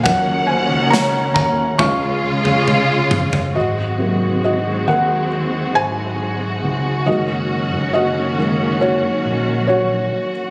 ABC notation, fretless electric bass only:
X:1
M:4/4
L:1/16
Q:1/4=68
K:Abmix
V:1 name="Fretless electric bass" clef=bass
E,,3 D,,3 E,,2 D,,2 D,,6 | A,,,6 E,,4 A,,,4 D,,2 | G,,,3 G,,,6 z B,,,4 z2 |]